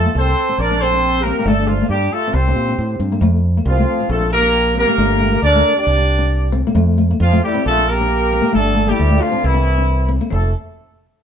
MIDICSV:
0, 0, Header, 1, 4, 480
1, 0, Start_track
1, 0, Key_signature, -1, "major"
1, 0, Tempo, 442804
1, 1572, Time_signature, 4, 2, 24, 8
1, 12173, End_track
2, 0, Start_track
2, 0, Title_t, "Horn section"
2, 0, Program_c, 0, 61
2, 0, Note_on_c, 0, 57, 78
2, 0, Note_on_c, 0, 65, 67
2, 0, Note_on_c, 0, 69, 85
2, 128, Note_off_c, 0, 65, 0
2, 141, Note_off_c, 0, 57, 0
2, 141, Note_off_c, 0, 69, 0
2, 170, Note_on_c, 0, 69, 84
2, 189, Note_on_c, 0, 60, 90
2, 189, Note_on_c, 0, 72, 97
2, 599, Note_off_c, 0, 69, 0
2, 610, Note_off_c, 0, 60, 0
2, 610, Note_off_c, 0, 72, 0
2, 636, Note_on_c, 0, 70, 85
2, 642, Note_on_c, 0, 62, 96
2, 642, Note_on_c, 0, 74, 105
2, 865, Note_off_c, 0, 70, 0
2, 867, Note_on_c, 0, 69, 81
2, 868, Note_off_c, 0, 62, 0
2, 868, Note_off_c, 0, 74, 0
2, 873, Note_on_c, 0, 60, 105
2, 873, Note_on_c, 0, 72, 114
2, 1325, Note_on_c, 0, 58, 83
2, 1325, Note_on_c, 0, 70, 91
2, 1328, Note_on_c, 0, 67, 77
2, 1338, Note_off_c, 0, 69, 0
2, 1341, Note_off_c, 0, 60, 0
2, 1341, Note_off_c, 0, 72, 0
2, 1567, Note_off_c, 0, 58, 0
2, 1567, Note_off_c, 0, 70, 0
2, 1569, Note_off_c, 0, 67, 0
2, 1587, Note_on_c, 0, 62, 78
2, 1588, Note_on_c, 0, 57, 84
2, 1588, Note_on_c, 0, 69, 91
2, 1800, Note_off_c, 0, 62, 0
2, 1811, Note_on_c, 0, 53, 68
2, 1811, Note_on_c, 0, 65, 74
2, 1813, Note_on_c, 0, 62, 68
2, 1818, Note_off_c, 0, 57, 0
2, 1818, Note_off_c, 0, 69, 0
2, 2029, Note_off_c, 0, 62, 0
2, 2042, Note_on_c, 0, 62, 71
2, 2050, Note_off_c, 0, 53, 0
2, 2050, Note_off_c, 0, 65, 0
2, 2051, Note_on_c, 0, 55, 89
2, 2051, Note_on_c, 0, 67, 96
2, 2267, Note_off_c, 0, 62, 0
2, 2272, Note_off_c, 0, 55, 0
2, 2272, Note_off_c, 0, 67, 0
2, 2299, Note_on_c, 0, 57, 90
2, 2299, Note_on_c, 0, 69, 98
2, 2310, Note_on_c, 0, 65, 84
2, 2532, Note_off_c, 0, 57, 0
2, 2532, Note_off_c, 0, 69, 0
2, 2535, Note_on_c, 0, 67, 68
2, 2536, Note_on_c, 0, 60, 83
2, 2536, Note_on_c, 0, 72, 90
2, 2538, Note_off_c, 0, 65, 0
2, 3248, Note_off_c, 0, 67, 0
2, 3249, Note_off_c, 0, 60, 0
2, 3249, Note_off_c, 0, 72, 0
2, 3980, Note_on_c, 0, 53, 84
2, 3980, Note_on_c, 0, 65, 91
2, 3989, Note_on_c, 0, 60, 71
2, 4418, Note_off_c, 0, 53, 0
2, 4418, Note_off_c, 0, 65, 0
2, 4423, Note_off_c, 0, 60, 0
2, 4447, Note_on_c, 0, 57, 78
2, 4447, Note_on_c, 0, 69, 84
2, 4463, Note_on_c, 0, 65, 70
2, 4668, Note_off_c, 0, 57, 0
2, 4668, Note_off_c, 0, 69, 0
2, 4676, Note_off_c, 0, 65, 0
2, 4696, Note_on_c, 0, 58, 98
2, 4696, Note_on_c, 0, 70, 106
2, 4699, Note_on_c, 0, 67, 75
2, 5136, Note_off_c, 0, 58, 0
2, 5136, Note_off_c, 0, 70, 0
2, 5138, Note_off_c, 0, 67, 0
2, 5186, Note_on_c, 0, 58, 92
2, 5186, Note_on_c, 0, 67, 84
2, 5186, Note_on_c, 0, 70, 100
2, 5852, Note_off_c, 0, 58, 0
2, 5852, Note_off_c, 0, 67, 0
2, 5852, Note_off_c, 0, 70, 0
2, 5882, Note_on_c, 0, 62, 106
2, 5882, Note_on_c, 0, 74, 115
2, 5894, Note_on_c, 0, 70, 90
2, 6227, Note_off_c, 0, 62, 0
2, 6227, Note_off_c, 0, 74, 0
2, 6234, Note_off_c, 0, 70, 0
2, 6255, Note_on_c, 0, 67, 64
2, 6266, Note_on_c, 0, 62, 85
2, 6266, Note_on_c, 0, 74, 93
2, 7045, Note_off_c, 0, 67, 0
2, 7050, Note_off_c, 0, 62, 0
2, 7050, Note_off_c, 0, 74, 0
2, 7821, Note_on_c, 0, 53, 94
2, 7821, Note_on_c, 0, 65, 103
2, 7833, Note_on_c, 0, 60, 72
2, 8040, Note_off_c, 0, 53, 0
2, 8040, Note_off_c, 0, 65, 0
2, 8046, Note_off_c, 0, 60, 0
2, 8058, Note_on_c, 0, 55, 89
2, 8058, Note_on_c, 0, 67, 97
2, 8074, Note_on_c, 0, 64, 78
2, 8279, Note_off_c, 0, 55, 0
2, 8279, Note_off_c, 0, 67, 0
2, 8287, Note_off_c, 0, 64, 0
2, 8302, Note_on_c, 0, 57, 98
2, 8302, Note_on_c, 0, 69, 106
2, 8318, Note_on_c, 0, 65, 81
2, 8522, Note_off_c, 0, 57, 0
2, 8522, Note_off_c, 0, 69, 0
2, 8530, Note_off_c, 0, 65, 0
2, 8537, Note_on_c, 0, 58, 98
2, 8537, Note_on_c, 0, 70, 107
2, 8561, Note_on_c, 0, 67, 93
2, 9248, Note_on_c, 0, 57, 90
2, 9248, Note_on_c, 0, 69, 98
2, 9258, Note_off_c, 0, 58, 0
2, 9258, Note_off_c, 0, 70, 0
2, 9270, Note_off_c, 0, 67, 0
2, 9287, Note_on_c, 0, 50, 76
2, 9287, Note_on_c, 0, 62, 83
2, 9597, Note_off_c, 0, 57, 0
2, 9597, Note_off_c, 0, 69, 0
2, 9617, Note_off_c, 0, 50, 0
2, 9617, Note_off_c, 0, 62, 0
2, 9628, Note_on_c, 0, 55, 90
2, 9628, Note_on_c, 0, 67, 98
2, 9657, Note_on_c, 0, 64, 80
2, 9979, Note_on_c, 0, 53, 90
2, 9979, Note_on_c, 0, 65, 97
2, 9980, Note_off_c, 0, 55, 0
2, 9980, Note_off_c, 0, 67, 0
2, 9994, Note_off_c, 0, 64, 0
2, 10003, Note_on_c, 0, 62, 69
2, 10220, Note_off_c, 0, 53, 0
2, 10220, Note_off_c, 0, 65, 0
2, 10231, Note_on_c, 0, 52, 81
2, 10231, Note_on_c, 0, 64, 88
2, 10232, Note_off_c, 0, 62, 0
2, 10256, Note_on_c, 0, 60, 60
2, 10948, Note_off_c, 0, 52, 0
2, 10948, Note_off_c, 0, 64, 0
2, 10961, Note_off_c, 0, 60, 0
2, 11176, Note_on_c, 0, 57, 71
2, 11176, Note_on_c, 0, 69, 77
2, 11403, Note_off_c, 0, 57, 0
2, 11403, Note_off_c, 0, 69, 0
2, 12173, End_track
3, 0, Start_track
3, 0, Title_t, "Steel-string acoustic guitar"
3, 0, Program_c, 1, 25
3, 57, Note_on_c, 1, 58, 65
3, 220, Note_off_c, 1, 58, 0
3, 532, Note_on_c, 1, 60, 70
3, 695, Note_off_c, 1, 60, 0
3, 771, Note_on_c, 1, 62, 73
3, 934, Note_off_c, 1, 62, 0
3, 994, Note_on_c, 1, 62, 64
3, 1163, Note_off_c, 1, 62, 0
3, 1364, Note_on_c, 1, 60, 80
3, 1446, Note_off_c, 1, 60, 0
3, 1509, Note_on_c, 1, 58, 76
3, 1571, Note_off_c, 1, 58, 0
3, 1601, Note_on_c, 1, 57, 95
3, 1762, Note_off_c, 1, 57, 0
3, 1832, Note_on_c, 1, 57, 62
3, 1917, Note_off_c, 1, 57, 0
3, 1969, Note_on_c, 1, 58, 65
3, 2130, Note_off_c, 1, 58, 0
3, 2464, Note_on_c, 1, 60, 72
3, 2619, Note_off_c, 1, 60, 0
3, 2689, Note_on_c, 1, 62, 74
3, 2849, Note_off_c, 1, 62, 0
3, 2906, Note_on_c, 1, 62, 65
3, 3074, Note_off_c, 1, 62, 0
3, 3250, Note_on_c, 1, 60, 72
3, 3341, Note_off_c, 1, 60, 0
3, 3383, Note_on_c, 1, 58, 68
3, 3459, Note_off_c, 1, 58, 0
3, 3493, Note_on_c, 1, 57, 86
3, 3662, Note_off_c, 1, 57, 0
3, 3873, Note_on_c, 1, 58, 62
3, 4038, Note_off_c, 1, 58, 0
3, 4094, Note_on_c, 1, 57, 74
3, 4266, Note_off_c, 1, 57, 0
3, 4338, Note_on_c, 1, 60, 66
3, 4509, Note_off_c, 1, 60, 0
3, 4559, Note_on_c, 1, 62, 68
3, 4737, Note_off_c, 1, 62, 0
3, 4781, Note_on_c, 1, 62, 66
3, 4965, Note_off_c, 1, 62, 0
3, 5148, Note_on_c, 1, 60, 79
3, 5247, Note_off_c, 1, 60, 0
3, 5285, Note_on_c, 1, 58, 71
3, 5368, Note_off_c, 1, 58, 0
3, 5402, Note_on_c, 1, 57, 79
3, 5576, Note_off_c, 1, 57, 0
3, 5640, Note_on_c, 1, 57, 70
3, 5734, Note_off_c, 1, 57, 0
3, 5768, Note_on_c, 1, 58, 58
3, 5943, Note_off_c, 1, 58, 0
3, 6013, Note_on_c, 1, 57, 71
3, 6187, Note_off_c, 1, 57, 0
3, 6481, Note_on_c, 1, 62, 66
3, 6660, Note_off_c, 1, 62, 0
3, 6705, Note_on_c, 1, 62, 63
3, 6890, Note_off_c, 1, 62, 0
3, 7071, Note_on_c, 1, 60, 88
3, 7171, Note_off_c, 1, 60, 0
3, 7229, Note_on_c, 1, 58, 77
3, 7305, Note_off_c, 1, 58, 0
3, 7321, Note_on_c, 1, 57, 83
3, 7497, Note_off_c, 1, 57, 0
3, 7564, Note_on_c, 1, 57, 65
3, 7660, Note_off_c, 1, 57, 0
3, 7703, Note_on_c, 1, 58, 67
3, 7875, Note_off_c, 1, 58, 0
3, 7936, Note_on_c, 1, 57, 75
3, 8111, Note_off_c, 1, 57, 0
3, 8180, Note_on_c, 1, 60, 83
3, 8354, Note_off_c, 1, 60, 0
3, 8422, Note_on_c, 1, 62, 71
3, 8596, Note_off_c, 1, 62, 0
3, 8679, Note_on_c, 1, 62, 70
3, 8847, Note_off_c, 1, 62, 0
3, 9026, Note_on_c, 1, 60, 76
3, 9116, Note_off_c, 1, 60, 0
3, 9125, Note_on_c, 1, 58, 75
3, 9212, Note_off_c, 1, 58, 0
3, 9240, Note_on_c, 1, 57, 81
3, 9420, Note_off_c, 1, 57, 0
3, 9482, Note_on_c, 1, 57, 71
3, 9581, Note_off_c, 1, 57, 0
3, 9616, Note_on_c, 1, 58, 66
3, 9794, Note_off_c, 1, 58, 0
3, 9867, Note_on_c, 1, 57, 78
3, 10041, Note_off_c, 1, 57, 0
3, 10101, Note_on_c, 1, 60, 79
3, 10278, Note_off_c, 1, 60, 0
3, 10344, Note_on_c, 1, 62, 70
3, 10520, Note_off_c, 1, 62, 0
3, 10598, Note_on_c, 1, 62, 59
3, 10769, Note_off_c, 1, 62, 0
3, 10933, Note_on_c, 1, 60, 80
3, 11030, Note_off_c, 1, 60, 0
3, 11066, Note_on_c, 1, 58, 72
3, 11148, Note_off_c, 1, 58, 0
3, 11168, Note_on_c, 1, 53, 82
3, 11317, Note_off_c, 1, 53, 0
3, 12173, End_track
4, 0, Start_track
4, 0, Title_t, "Fingered electric bass"
4, 0, Program_c, 2, 33
4, 162, Note_on_c, 2, 36, 92
4, 353, Note_off_c, 2, 36, 0
4, 632, Note_on_c, 2, 34, 86
4, 1425, Note_off_c, 2, 34, 0
4, 1574, Note_on_c, 2, 31, 95
4, 1973, Note_off_c, 2, 31, 0
4, 2047, Note_on_c, 2, 43, 85
4, 2248, Note_off_c, 2, 43, 0
4, 2531, Note_on_c, 2, 36, 97
4, 2729, Note_off_c, 2, 36, 0
4, 2771, Note_on_c, 2, 46, 75
4, 2984, Note_off_c, 2, 46, 0
4, 3017, Note_on_c, 2, 45, 78
4, 3227, Note_off_c, 2, 45, 0
4, 3246, Note_on_c, 2, 43, 66
4, 3460, Note_off_c, 2, 43, 0
4, 3479, Note_on_c, 2, 41, 96
4, 3882, Note_off_c, 2, 41, 0
4, 3962, Note_on_c, 2, 36, 93
4, 4163, Note_off_c, 2, 36, 0
4, 4437, Note_on_c, 2, 34, 89
4, 5244, Note_off_c, 2, 34, 0
4, 5397, Note_on_c, 2, 31, 92
4, 5802, Note_off_c, 2, 31, 0
4, 5877, Note_on_c, 2, 38, 90
4, 6082, Note_off_c, 2, 38, 0
4, 6359, Note_on_c, 2, 36, 85
4, 7168, Note_off_c, 2, 36, 0
4, 7314, Note_on_c, 2, 41, 94
4, 7724, Note_off_c, 2, 41, 0
4, 7805, Note_on_c, 2, 41, 94
4, 8009, Note_off_c, 2, 41, 0
4, 8302, Note_on_c, 2, 34, 87
4, 9106, Note_off_c, 2, 34, 0
4, 9266, Note_on_c, 2, 31, 90
4, 9665, Note_off_c, 2, 31, 0
4, 9749, Note_on_c, 2, 38, 94
4, 9946, Note_off_c, 2, 38, 0
4, 10234, Note_on_c, 2, 36, 92
4, 11035, Note_off_c, 2, 36, 0
4, 11191, Note_on_c, 2, 29, 95
4, 11411, Note_off_c, 2, 29, 0
4, 12173, End_track
0, 0, End_of_file